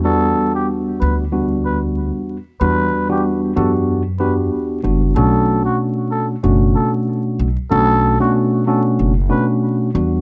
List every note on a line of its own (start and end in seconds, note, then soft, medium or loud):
0.00 0.33 E2 loud
0.04 1.23 E2 medium
0.04 1.23 G3 medium
0.04 1.24 B3 medium
0.04 1.24 D4 medium
0.04 1.24 F#4 medium
0.04 0.52 A4 loud
0.55 0.68 G4 medium
1.00 2.11 D2 loud
1.00 1.17 B4 medium
1.32 2.36 E2 medium
1.32 2.36 G3 medium
1.32 2.36 B3 medium
1.32 2.36 D4 medium
1.32 2.36 F#4 medium
1.65 1.81 B4 medium
2.60 2.90 E2 loud
2.60 3.06 E2 medium
2.60 3.06 G3 medium
2.60 3.06 B3 medium
2.60 3.06 D4 medium
2.60 3.06 F#4 medium
2.60 3.07 B4 loud
3.09 3.52 E2 medium
3.09 3.52 G3 medium
3.09 3.52 B3 medium
3.09 3.53 D4 medium
3.09 3.53 F#4 loud
3.09 3.23 G4 medium
3.56 4.01 E2 medium
3.56 4.48 F#2 loud
3.56 4.02 B3 medium
3.56 4.02 D4 medium
3.56 4.02 F#4 loud
3.56 4.01 G4 medium
3.56 3.72 A4 medium
4.19 4.79 E2 medium
4.19 4.79 B3 medium
4.19 4.79 D4 medium
4.19 4.79 F#4 medium
4.19 4.79 G4 medium
4.19 4.36 B4 medium
4.83 5.13 F#1 medium
4.83 5.13 E2 medium
4.83 5.13 G3 medium
4.83 5.13 B3 medium
4.83 5.13 D4 medium
4.83 5.13 F#4 medium
5.16 5.62 B1 loud
5.16 6.35 B2 medium
5.16 6.35 A3 medium
5.16 6.35 C#4 medium
5.16 6.35 D4 medium
5.16 6.35 F#4 medium
5.16 5.62 A4 medium
5.65 5.78 F#4 medium
6.11 6.27 A4 medium
6.43 6.73 F#1 loud
6.43 7.47 B2 medium
6.43 7.47 A3 medium
6.43 7.47 C#4 medium
6.43 7.47 D4 medium
6.43 7.47 F#4 loud
6.75 6.91 A4 medium
7.39 7.55 B1 loud
7.70 8.17 B1 loud
7.70 8.16 B2 medium
7.70 8.16 A3 medium
7.70 8.16 C#4 medium
7.70 8.16 D4 medium
7.70 8.16 F#4 loud
7.70 8.17 A4 loud
8.20 8.63 B2 medium
8.20 8.63 A3 medium
8.20 8.63 C#4 medium
8.20 8.63 D4 medium
8.20 8.63 F#4 loud
8.20 8.34 F#4 medium
8.67 9.12 B2 medium
8.67 9.12 A3 medium
8.67 9.12 C#4 medium
8.67 9.13 D4 medium
8.67 9.13 F#4 loud
8.67 8.83 A4 medium
8.99 9.28 F#1 medium
9.29 9.89 B2 loud
9.29 9.89 A3 medium
9.29 9.89 C#4 medium
9.29 9.89 D4 medium
9.29 9.90 F#4 loud
9.29 9.47 B4 medium
9.94 10.21 E2 medium
9.94 10.21 E2 loud
9.94 10.21 G3 medium
9.94 10.21 B3 medium
9.94 10.21 D4 medium
9.94 10.21 F#4 medium